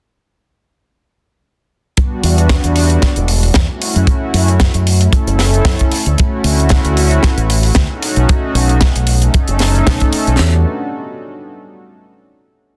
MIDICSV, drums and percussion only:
0, 0, Header, 1, 2, 480
1, 0, Start_track
1, 0, Tempo, 526316
1, 1798, Time_signature, 4, 2, 24, 8
1, 11644, End_track
2, 0, Start_track
2, 0, Title_t, "Drums"
2, 1798, Note_on_c, 9, 42, 82
2, 1802, Note_on_c, 9, 36, 125
2, 1889, Note_off_c, 9, 42, 0
2, 1893, Note_off_c, 9, 36, 0
2, 2038, Note_on_c, 9, 46, 104
2, 2130, Note_off_c, 9, 46, 0
2, 2171, Note_on_c, 9, 42, 53
2, 2262, Note_off_c, 9, 42, 0
2, 2275, Note_on_c, 9, 38, 121
2, 2275, Note_on_c, 9, 42, 81
2, 2279, Note_on_c, 9, 36, 127
2, 2366, Note_off_c, 9, 38, 0
2, 2366, Note_off_c, 9, 42, 0
2, 2370, Note_off_c, 9, 36, 0
2, 2406, Note_on_c, 9, 42, 64
2, 2497, Note_off_c, 9, 42, 0
2, 2514, Note_on_c, 9, 46, 111
2, 2605, Note_off_c, 9, 46, 0
2, 2643, Note_on_c, 9, 42, 66
2, 2734, Note_off_c, 9, 42, 0
2, 2755, Note_on_c, 9, 38, 59
2, 2757, Note_on_c, 9, 42, 86
2, 2760, Note_on_c, 9, 36, 113
2, 2846, Note_off_c, 9, 38, 0
2, 2848, Note_off_c, 9, 42, 0
2, 2851, Note_off_c, 9, 36, 0
2, 2883, Note_on_c, 9, 42, 54
2, 2974, Note_off_c, 9, 42, 0
2, 2993, Note_on_c, 9, 46, 106
2, 3084, Note_off_c, 9, 46, 0
2, 3129, Note_on_c, 9, 46, 75
2, 3220, Note_off_c, 9, 46, 0
2, 3229, Note_on_c, 9, 38, 111
2, 3236, Note_on_c, 9, 42, 88
2, 3245, Note_on_c, 9, 36, 109
2, 3321, Note_off_c, 9, 38, 0
2, 3327, Note_off_c, 9, 42, 0
2, 3336, Note_off_c, 9, 36, 0
2, 3480, Note_on_c, 9, 46, 117
2, 3572, Note_off_c, 9, 46, 0
2, 3610, Note_on_c, 9, 42, 58
2, 3701, Note_off_c, 9, 42, 0
2, 3713, Note_on_c, 9, 36, 127
2, 3715, Note_on_c, 9, 42, 76
2, 3804, Note_off_c, 9, 36, 0
2, 3807, Note_off_c, 9, 42, 0
2, 3958, Note_on_c, 9, 46, 117
2, 4049, Note_off_c, 9, 46, 0
2, 4089, Note_on_c, 9, 42, 56
2, 4180, Note_off_c, 9, 42, 0
2, 4193, Note_on_c, 9, 38, 120
2, 4196, Note_on_c, 9, 42, 86
2, 4203, Note_on_c, 9, 36, 126
2, 4284, Note_off_c, 9, 38, 0
2, 4287, Note_off_c, 9, 42, 0
2, 4295, Note_off_c, 9, 36, 0
2, 4324, Note_on_c, 9, 42, 63
2, 4415, Note_off_c, 9, 42, 0
2, 4440, Note_on_c, 9, 46, 114
2, 4531, Note_off_c, 9, 46, 0
2, 4567, Note_on_c, 9, 42, 73
2, 4658, Note_off_c, 9, 42, 0
2, 4675, Note_on_c, 9, 36, 109
2, 4678, Note_on_c, 9, 42, 95
2, 4766, Note_off_c, 9, 36, 0
2, 4769, Note_off_c, 9, 42, 0
2, 4810, Note_on_c, 9, 42, 54
2, 4901, Note_off_c, 9, 42, 0
2, 4915, Note_on_c, 9, 38, 70
2, 4919, Note_on_c, 9, 46, 108
2, 5006, Note_off_c, 9, 38, 0
2, 5010, Note_off_c, 9, 46, 0
2, 5051, Note_on_c, 9, 42, 60
2, 5142, Note_off_c, 9, 42, 0
2, 5151, Note_on_c, 9, 46, 79
2, 5152, Note_on_c, 9, 38, 110
2, 5153, Note_on_c, 9, 36, 127
2, 5242, Note_off_c, 9, 46, 0
2, 5244, Note_off_c, 9, 36, 0
2, 5244, Note_off_c, 9, 38, 0
2, 5282, Note_on_c, 9, 42, 55
2, 5297, Note_on_c, 9, 36, 61
2, 5374, Note_off_c, 9, 42, 0
2, 5388, Note_off_c, 9, 36, 0
2, 5395, Note_on_c, 9, 46, 113
2, 5486, Note_off_c, 9, 46, 0
2, 5529, Note_on_c, 9, 42, 60
2, 5620, Note_off_c, 9, 42, 0
2, 5638, Note_on_c, 9, 42, 75
2, 5651, Note_on_c, 9, 36, 125
2, 5729, Note_off_c, 9, 42, 0
2, 5742, Note_off_c, 9, 36, 0
2, 5875, Note_on_c, 9, 46, 115
2, 5966, Note_off_c, 9, 46, 0
2, 6017, Note_on_c, 9, 42, 56
2, 6103, Note_off_c, 9, 42, 0
2, 6103, Note_on_c, 9, 42, 78
2, 6112, Note_on_c, 9, 38, 114
2, 6123, Note_on_c, 9, 36, 127
2, 6194, Note_off_c, 9, 42, 0
2, 6203, Note_off_c, 9, 38, 0
2, 6214, Note_off_c, 9, 36, 0
2, 6244, Note_on_c, 9, 42, 72
2, 6335, Note_off_c, 9, 42, 0
2, 6356, Note_on_c, 9, 46, 118
2, 6448, Note_off_c, 9, 46, 0
2, 6484, Note_on_c, 9, 42, 60
2, 6576, Note_off_c, 9, 42, 0
2, 6591, Note_on_c, 9, 38, 67
2, 6601, Note_on_c, 9, 42, 94
2, 6602, Note_on_c, 9, 36, 113
2, 6682, Note_off_c, 9, 38, 0
2, 6692, Note_off_c, 9, 42, 0
2, 6693, Note_off_c, 9, 36, 0
2, 6727, Note_on_c, 9, 42, 52
2, 6818, Note_off_c, 9, 42, 0
2, 6838, Note_on_c, 9, 46, 126
2, 6930, Note_off_c, 9, 46, 0
2, 6960, Note_on_c, 9, 46, 85
2, 7052, Note_off_c, 9, 46, 0
2, 7067, Note_on_c, 9, 38, 127
2, 7069, Note_on_c, 9, 42, 83
2, 7077, Note_on_c, 9, 36, 116
2, 7158, Note_off_c, 9, 38, 0
2, 7160, Note_off_c, 9, 42, 0
2, 7168, Note_off_c, 9, 36, 0
2, 7319, Note_on_c, 9, 46, 110
2, 7410, Note_off_c, 9, 46, 0
2, 7444, Note_on_c, 9, 42, 51
2, 7536, Note_off_c, 9, 42, 0
2, 7561, Note_on_c, 9, 42, 89
2, 7564, Note_on_c, 9, 36, 124
2, 7652, Note_off_c, 9, 42, 0
2, 7655, Note_off_c, 9, 36, 0
2, 7800, Note_on_c, 9, 46, 120
2, 7891, Note_off_c, 9, 46, 0
2, 7929, Note_on_c, 9, 42, 59
2, 8020, Note_off_c, 9, 42, 0
2, 8032, Note_on_c, 9, 38, 117
2, 8035, Note_on_c, 9, 42, 79
2, 8042, Note_on_c, 9, 36, 122
2, 8123, Note_off_c, 9, 38, 0
2, 8126, Note_off_c, 9, 42, 0
2, 8133, Note_off_c, 9, 36, 0
2, 8168, Note_on_c, 9, 42, 69
2, 8259, Note_off_c, 9, 42, 0
2, 8270, Note_on_c, 9, 46, 120
2, 8361, Note_off_c, 9, 46, 0
2, 8406, Note_on_c, 9, 42, 64
2, 8497, Note_off_c, 9, 42, 0
2, 8517, Note_on_c, 9, 42, 95
2, 8522, Note_on_c, 9, 36, 122
2, 8608, Note_off_c, 9, 42, 0
2, 8613, Note_off_c, 9, 36, 0
2, 8642, Note_on_c, 9, 42, 57
2, 8733, Note_off_c, 9, 42, 0
2, 8747, Note_on_c, 9, 46, 112
2, 8758, Note_on_c, 9, 38, 65
2, 8838, Note_off_c, 9, 46, 0
2, 8849, Note_off_c, 9, 38, 0
2, 8892, Note_on_c, 9, 42, 53
2, 8984, Note_off_c, 9, 42, 0
2, 8998, Note_on_c, 9, 38, 97
2, 9003, Note_on_c, 9, 36, 122
2, 9008, Note_on_c, 9, 46, 64
2, 9090, Note_off_c, 9, 38, 0
2, 9094, Note_off_c, 9, 36, 0
2, 9099, Note_off_c, 9, 46, 0
2, 9122, Note_on_c, 9, 42, 59
2, 9133, Note_on_c, 9, 36, 63
2, 9213, Note_off_c, 9, 42, 0
2, 9225, Note_off_c, 9, 36, 0
2, 9235, Note_on_c, 9, 46, 116
2, 9326, Note_off_c, 9, 46, 0
2, 9368, Note_on_c, 9, 42, 50
2, 9460, Note_off_c, 9, 42, 0
2, 9477, Note_on_c, 9, 38, 106
2, 9477, Note_on_c, 9, 53, 89
2, 9568, Note_off_c, 9, 38, 0
2, 9568, Note_off_c, 9, 53, 0
2, 11644, End_track
0, 0, End_of_file